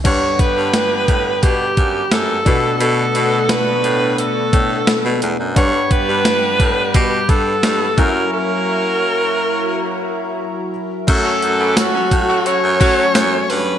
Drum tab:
CC |x-------|--------|--------|--------|
HH |xxxxxxxx|xxxxxxxx|xxxxxxxx|--------|
TB |--------|--------|--------|--------|
SD |--o---o-|--o---o-|--o---o-|--------|
BD |oo-ooo-o|-----o--|oo-ooo-o|--------|

CC |x-------|
HH |xxxxxxxo|
TB |--x---x-|
SD |--o---o-|
BD |o--o-o--|